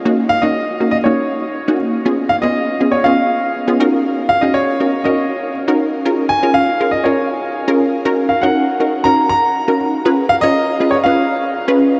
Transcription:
X:1
M:4/4
L:1/16
Q:1/4=120
K:Ebm
V:1 name="Grand piano"
z2 f e4 e d6 z2 | z2 f e4 d f6 z2 | z2 f e d4 e4 z4 | z2 a2 f3 e d6 z2 |
z2 f g4- g b2 b4 z2 | z2 f e4 d f6 z2 |]
V:2 name="Synth pluck"
[B,DEG]2 z [B,DEG]2 z [B,DEG] z [B,DEG]3 z2 [B,DEG]2 z | [CDFA]2 z [CDFA]2 z [CDFA] z [CDFA]3 z2 [CDFA] [DEGB]2- | [DEGB]2 z [DEGA]2 z [DEGB] z [DEGB]3 z2 [DEGB]2 z | [DFAB]2 z [DFAB]2 z [DFAB] z [DFAB]3 z2 [DFAB]2 z |
[DEGB]2 z [DEGB]2 z [DEGB] z [DEGB]3 z2 [DEGB]2 z | [DFAc]2 z [DFAd]2 z [DFAc] z [DFAc]3 z2 [DFAc]2 z |]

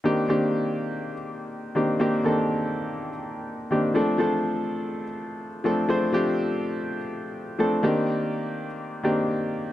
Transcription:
X:1
M:4/4
L:1/8
Q:"Swing 16ths" 1/4=124
K:Cdor
V:1 name="Grand piano"
[E,B,CDG] [E,B,CDG]3 z3 [E,B,CDG] | [E,B,CDG] [E,B,CDA]3 z3 [E,B,CDG] | [F,A,CDA] [F,A,CDA]3 z3 [F,A,CDA] | [F,A,CDc] [F,A,CDG]3 z3 [F,A,CDA] |
[E,B,CDG]3 z2 [E,B,CDG]3 |]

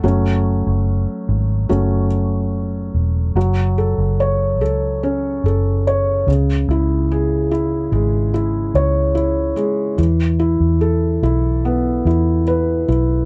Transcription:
X:1
M:4/4
L:1/16
Q:1/4=72
K:F#m
V:1 name="Felt piano"
[F,A,C]8 [F,A,C]2 z6 | F,2 A2 c2 A2 C2 A2 c2 C,2 | E2 G2 E2 G,2 E2 c2 E2 G,2 | E,2 E2 A2 E2 B,2 E2 B2 E2 |]
V:2 name="Fingered electric bass" clef=bass
F,,,3 F,,,2 z G,,,2 F,,,6 E,,,2 | F,,,3 F,,,3 C,,4 F,,,4 C,,2 | C,,6 G,,,4 C,,4 z2 | E,,3 E,,3 B,,,4 E,,4 B,,,2 |]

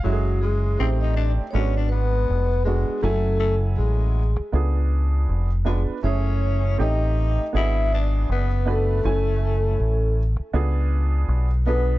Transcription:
X:1
M:4/4
L:1/16
Q:"Swing 16ths" 1/4=80
K:F#m
V:1 name="Vibraphone"
F2 G2 =c _e d2 ^c d B4 G2 | A2 A2 G4 z6 G2 | c4 _e4 =e2 d2 B2 A2- | A6 z8 B2 |]
V:2 name="Upright piano"
[G,CEFG]4 [A,=C_E=G]4 [^G,B,DF]4 z2 [G,B,DF]2 | [F,CEg]6 z2 [B,D^EG]4 z2 [B,DEB]2 | [A,CEG]4 [A,=C_E=G]4 [B,DF^G]4 z2 [B,DFB]2 | [A,CEg]6 z2 [B,D^EG]4 z2 [B,DEG]2 |]
V:3 name="Tenor saxophone"
F,2 G,2 =C _E D2 ^C D B,4 G,2 | A,2 A,2 G,4 z6 G,2 | C4 _E4 =E2 D2 B,2 A,2- | A,6 z8 B,2 |]
V:4 name="Fingered electric bass" clef=bass
F,,,4 A,,,3 z G,,,4 ^E,,,3 z | F,,,4 A,,,3 z C,,4 ^E,,,3 z | F,,,4 A,,,3 z G,,,4 F,,,4 | F,,,4 A,,,3 z C,,4 B,,,4 |]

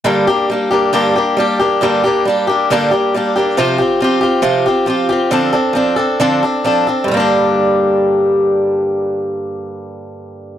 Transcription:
X:1
M:4/4
L:1/8
Q:1/4=136
K:Gm
V:1 name="Steel-string acoustic guitar"
[G,,D,G,B,DG] [G,B,DG] [G,B,DG] [G,B,DG] [G,,D,G,B,DG] [G,B,DG] [G,B,DG] [G,B,DG] | [G,,D,G,B,DG] [G,B,DG] [G,B,DG] [G,B,DG] [G,,D,G,B,DG] [G,B,DG] [G,B,DG] [G,B,DG] | [C,F,CFG] [CFG] [F,CFG] [CFG] [C,F,CFG] [CFG] [F,CFG] [CFG] | [D,F,CDA] [CDA] [F,CDA] [CDA] [D,F,CDA] [CDA] [F,CDA] [CDA] |
[G,,D,G,B,DG]8- | [G,,D,G,B,DG]8 |]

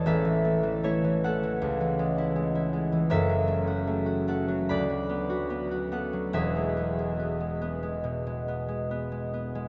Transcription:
X:1
M:4/4
L:1/16
Q:1/4=74
K:Emix
V:1 name="Harp"
[Acea]4 [Ec]2 [Af]8 z2 | [Ae]6 [Af]2 [db]6 [Af]2 | [Ge]16 |]
V:2 name="Harp" clef=bass
[A,,,E] E, A, E, A, E, A, E, C,, E, G, E G, E G, E, | [F,,,F,,] F, A, F A, F A, F, D,, F, B, F B, F B, F, | [E,,,E,,] G, B, G, B, G, B, G, B,, G, B, G, B, G, B, G, |]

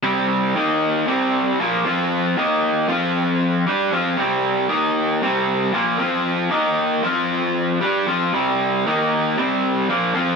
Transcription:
X:1
M:4/4
L:1/8
Q:1/4=116
K:Flyd
V:1 name="Overdriven electric guitar"
[C,G,C]2 [_E,_B,_E]2 [C,G,C]2 [_B,,F,B,] [F,CF]- | [F,CF] [_E,_B,_E]2 [F,CF]3 [G,DG] [F,CF] | [C,G,C]2 [_E,_B,_E]2 [C,G,C]2 [_B,,F,B,] [F,CF]- | [F,CF] [_E,_B,_E]2 [F,CF]3 [G,DG] [F,CF] |
[C,G,C]2 [_E,_B,_E]2 [C,G,C]2 [_B,,F,B,] [F,CF] |]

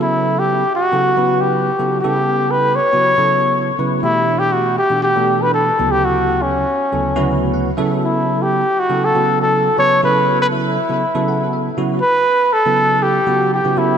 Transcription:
X:1
M:4/4
L:1/16
Q:1/4=120
K:Amix
V:1 name="Trumpet"
E3 G3 F4- F G4- G | G4 B2 c8 z2 | E3 G F2 G2 G3 B A3 G | F3 C8 z4 z |
E3 G3 F2 A3 A3 c2 | B3 B E8- E2 z2 | B4 A4 G4 G2 E2 |]
V:2 name="Tine electric piano"
z16 | z16 | z16 | z12 f2 e2 |
z16 | z8 z2 f2 e4 | z16 |]
V:3 name="Tine electric piano"
[C,F,B,EA]4- [C,F,B,EA] z2 [C,F,B,EA]2 [C,F,B,EB]4 z [C,F,B,EA]2 | [C,G,B,EA]6 z [C,F,B,EF]2 [C,F,B,EA]4 z [C,F,B,EB]2 | [B,,E,A,DG]6 z [B,,E,A,DG]2 [B,,E,A,DA]4 z [D,,C,F,B,EA]2- | [D,,C,F,B,EA]4- [D,,C,F,B,EA] z2 [D,,C,F,B,EA]2 [D,,C,F,B,EF]4 z [C,F,B,EA]2- |
[C,F,B,EA]4- [C,F,B,EA] z2 [C,F,B,EA]2 [C,F,B,EA]4 z [C,F,B,EB]2 | [C,F,B,EA]6 z [C,F,B,EA] z [C,F,B,EA]4 z [C,F,B,EF]2 | z4 z [C,F,B,EA]4 z [C,F,B,EF]3 [C,F,B,EF] [C,F,B,EA]2 |]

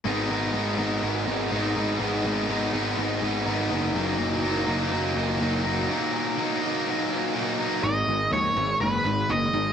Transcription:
X:1
M:4/4
L:1/8
Q:1/4=123
K:Abdor
V:1 name="Lead electric guitar"
z8 | z8 | z8 | z8 |
e2 d2 c2 e2 |]
V:2 name="Overdriven electric guitar" clef=bass
[A,,E,A,CE] [A,CE] [E,A,CE] [A,CE] [A,,E,A,CE]2 [E,A,CE] [A,CE] | [A,,E,A,CE] [A,CE] [E,A,CE] [A,CE] [A,,E,A,CE]2 [E,A,CE] [A,CE] | [E,,B,,E,G,B,E] [E,G,B,E] [E,G,B,E] [E,G,B,E] [E,,B,,E,G,B,E]2 [E,G,B,E] [E,G,B,E] | [E,,B,,E,G,B,E] [E,G,B,E] [E,G,B,E] [E,G,B,E] [E,,B,,E,G,B,E]2 [E,G,B,E] [E,G,B,E] |
[A,,E,] [A,,E,] [A,,F,] [A,,E,] [A,,E,] [A,,E,] [A,,E,] [A,,E,] |]
V:3 name="Distorted electric guitar" clef=bass
[A,,E,A,CE]2 [E,A,CE] [A,CE]2 [A,CE] [A,,E,A,CE]2 | [A,,E,A,CE]2 [E,A,CE] [A,CE]2 [A,CE] [A,,E,A,CE]2 | [E,,B,,E,G,B,E]2 [E,G,B,E] [E,G,B,E]2 [E,G,B,E] [E,,B,,E,G,B,E]2 | [E,,B,,E,G,B,E]2 [E,G,B,E] [E,G,B,E]2 [E,G,B,E] [E,,B,,E,G,B,E]2 |
[A,,E,] [A,,E,] [A,,F,] [A,,E,] [A,,E,] [A,,E,] [A,,E,] [A,,E,] |]
V:4 name="Picked electric bass" clef=bass
A,,, A,,, A,,, A,,, A,,, A,,, A,,, A,,, | A,,, A,,, A,,, A,,, A,,, A,,, A,,, G,,, | G,,, G,,, G,,, G,,, G,,, G,,, G,,, G,,, | z8 |
A,,, A,,, E,, A,,, G,,, A,,, G,,, A,,, |]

